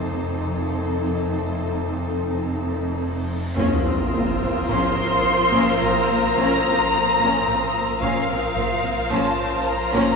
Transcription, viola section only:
0.00 3.32 D#4 soft
3.58 3.84 C#4 medium
3.58 7.98 F4 medium
3.87 3.95 C4 medium
4.15 4.23 A#3 medium
4.42 4.50 C4 medium
4.69 4.95 C#4 medium
5.53 5.79 C#4 medium
5.82 5.90 C4 medium
6.09 6.17 A#3 medium
6.38 6.63 C#4 medium
6.66 6.74 C4 soft
6.94 7.02 A#3 medium
7.21 7.46 C#4 medium
7.48 7.56 C4 medium
7.75 7.83 A#3 medium
8.02 8.27 C#4 medium
8.02 10.16 F4 medium
8.29 8.37 C4 soft
8.56 8.64 A#3 medium
8.83 8.91 C4 soft
9.11 9.36 C#4 medium
9.93 10.16 C#4 medium

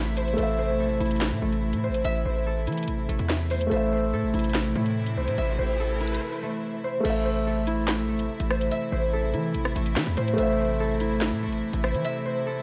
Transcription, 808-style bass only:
0.00 0.36 A1 loud
0.38 0.81 A1 loud
0.80 0.92 A#1 medium
0.90 1.00 A1 loud
1.00 1.33 A1 loud
1.32 1.42 A2 loud
1.42 1.75 A1 loud
1.73 1.91 A2 loud
1.89 2.04 A1 loud
2.05 2.25 A1 loud
2.26 2.69 A1 loud
2.67 2.89 E3 loud
2.88 3.08 A1 loud
3.09 3.19 A1 loud
3.19 3.69 E2 loud
3.71 4.14 A1 loud
4.13 4.25 A2 loud
4.23 4.33 A1 loud
4.34 4.67 A1 loud
4.65 4.75 A#1 loud
4.76 5.19 A2 loud
5.17 5.29 C2 loud
5.28 5.38 A2 loud
5.38 5.58 A1 loud
5.59 6.19 A1 loud
7.05 8.00 A1 loud
7.98 8.16 A#1 loud
8.14 8.29 A1 loud
8.40 8.70 A1 loud
8.92 9.35 A1 loud
9.34 9.56 E3 loud
9.55 9.75 A1 loud
9.76 9.98 A1 loud
9.96 10.06 E3 loud
10.07 10.17 E2 loud
10.17 10.37 A2 loud
10.38 11.33 A1 loud
11.32 11.49 A2 loud
11.47 11.62 A1 loud
11.73 11.96 A1 loud
11.94 12.04 E3 loud

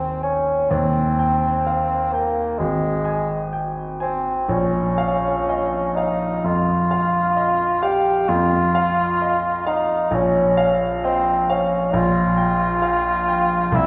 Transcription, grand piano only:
0.00 0.71 D#2 soft
0.00 0.24 G5 soft
0.00 0.23 G#5 soft
0.23 0.71 G#5 soft
0.71 2.55 D#2 soft
1.19 1.95 G5 soft
1.67 2.13 F5 soft
2.14 2.60 G5 soft
2.60 4.46 G#1 soft
3.05 3.81 G#5 soft
3.53 4.01 G5 soft
4.00 4.50 G#5 soft
4.49 6.39 A#1 medium
4.98 5.76 F5 soft
5.49 5.97 D#5 soft
5.97 6.72 F5 soft
6.44 7.18 F2 soft
6.91 7.64 F5 soft
7.37 7.82 D#5 soft
7.83 8.28 F5 soft
8.29 10.08 F2 medium
8.75 9.48 F5 soft
9.22 9.67 D#5 soft
9.67 10.12 F5 soft
10.11 11.89 A#1 medium
10.57 11.31 F5 soft
11.04 11.49 D#5 soft
11.50 11.94 F5 soft
11.93 13.70 A#1 medium
12.37 13.10 G5 soft
12.82 13.28 F5 soft
13.28 13.74 G5 soft
13.72 13.87 C2 medium

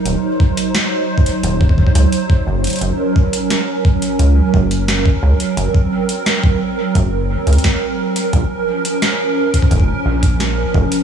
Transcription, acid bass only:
0.05 0.16 D#1 loud
1.44 1.85 D#1 loud
1.95 2.06 C#2 loud
2.47 2.69 F#1 medium
2.81 2.92 F#1 medium
4.19 4.41 C#2 medium
4.54 5.13 F#1 medium
5.23 5.34 C#2 medium
5.57 5.68 F#1 loud
6.95 7.37 F#1 medium
7.47 7.58 C#2 loud
8.33 8.44 A#1 loud
9.71 9.93 F1 medium
10.06 10.64 A#1 medium
10.74 10.85 F1 loud

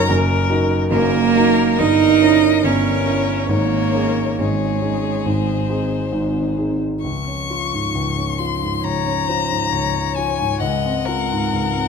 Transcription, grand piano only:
0.00 0.09 F#1 medium
0.00 0.09 F#2 medium
0.00 0.13 D#4 medium
0.00 0.13 F#4 medium
0.00 0.12 A#4 medium
0.09 0.49 F#1 medium
0.09 0.49 F#2 medium
0.50 0.88 D#4 medium
0.50 0.88 F#4 medium
0.50 0.88 A#4 medium
0.91 1.34 F#1 medium
0.91 1.34 F#2 medium
1.36 1.76 D#4 medium
1.36 1.77 F#4 soft
1.36 1.77 A#4 medium
1.80 2.21 G1 medium
1.80 2.21 G2 medium
2.21 2.59 C#4 medium
2.21 2.59 E4 medium
2.21 2.60 A#4 medium
2.63 3.04 G1 medium
2.63 3.04 G2 medium
3.06 3.46 C#4 soft
3.06 3.46 E4 soft
3.06 3.46 A#4 soft
3.49 3.93 G#1 medium
3.49 3.93 G#2 medium
3.94 4.35 C#4 medium
3.94 4.35 D#4 soft
3.94 4.35 G#4 medium
4.38 4.81 G#1 medium
4.38 4.81 G#2 medium
4.82 5.21 C#4 soft
4.82 5.21 D#4 soft
4.82 5.21 G#4 soft
5.26 5.67 G#1 soft
5.26 5.67 G#2 medium
5.69 6.08 C4 soft
5.69 6.08 D#4 medium
5.69 6.09 G#4 medium
6.12 6.55 G#1 medium
6.12 6.55 G#2 medium
6.57 6.99 C4 soft
6.57 6.99 D#4 soft
6.57 6.99 G#4 soft
7.04 7.94 C#2 medium
7.27 7.63 C#4 soft
7.50 7.86 F4 soft
7.73 8.08 G#2 soft
7.95 8.83 C#2 medium
8.18 8.53 C#4 soft
8.40 8.75 F4 soft
8.62 8.97 G#2 soft
8.84 9.71 C#2 soft
9.07 9.41 C#4 soft
9.30 9.63 F4 soft
9.50 9.85 G#2 soft
9.72 10.58 C#2 soft
9.95 10.30 C#4 soft
10.18 10.53 F4 soft
10.40 10.61 G#2 soft
10.61 11.51 C#2 medium
10.86 11.20 C4 medium
11.08 11.43 F4 soft
11.32 11.65 G#2 soft
11.53 11.88 C#2 medium
11.75 11.88 C4 soft

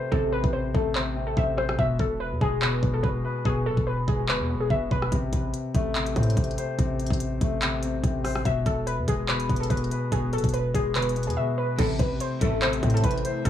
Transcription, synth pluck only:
0.12 0.28 A4 medium
0.32 0.48 B4 medium
0.53 0.69 C5 medium
0.74 0.90 A4 medium
0.96 1.26 C5 medium
1.27 1.34 A4 medium
1.37 1.53 E5 medium
1.57 1.73 C5 medium
1.79 1.95 E5 medium
2.00 2.15 A4 medium
2.20 2.36 B4 medium
2.41 2.57 G#4 medium
2.62 2.92 B4 medium
2.94 3.01 A4 medium
3.03 3.43 B4 medium
3.45 3.61 G#4 medium
3.66 3.82 A4 medium
3.87 4.03 B4 medium
4.08 4.24 G#4 medium
4.29 4.59 B4 medium
4.61 4.68 G#4 medium
4.70 4.86 E5 medium
4.91 5.07 B4 medium
8.45 8.61 E5 medium
8.66 8.82 A4 medium
8.87 9.03 B4 medium
9.08 9.24 G#4 medium
9.29 9.59 B4 medium
9.60 9.68 A4 medium
9.70 10.09 B4 medium
10.12 10.28 G#4 loud
10.33 10.49 A4 medium
10.54 10.70 B4 medium
10.74 10.90 G#4 medium
10.96 11.26 B4 medium
11.27 11.35 G#4 medium
11.37 11.53 E5 medium
11.58 11.74 B4 medium
11.79 11.95 A4 medium
11.99 12.15 B4 medium
12.21 12.37 C5 medium
12.41 12.57 A4 medium
12.62 12.92 C5 medium
12.94 13.01 A4 medium
13.04 13.43 B4 medium
13.45 13.50 A4 medium

